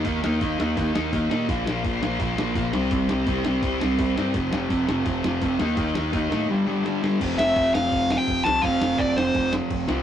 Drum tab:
CC |--------|--------|--------|--------|
HH |o-o-o-o-|o-o-o-o-|o-o-o-o-|o-o-o-o-|
SD |-o-o-o-o|-o-o-o-o|-o-o-o-o|-o-o-o-o|
BD |o-o-o-o-|o-o-o-o-|o-o-o-o-|o-o-o-o-|

CC |--------|x-x-x-x-|x-x-x-x-|
HH |o-o-----|--------|--------|
SD |-o-o--oo|-o-o-o-o|-o-o-o-o|
BD |o-o-----|o-o-o-o-|o-o-o-o-|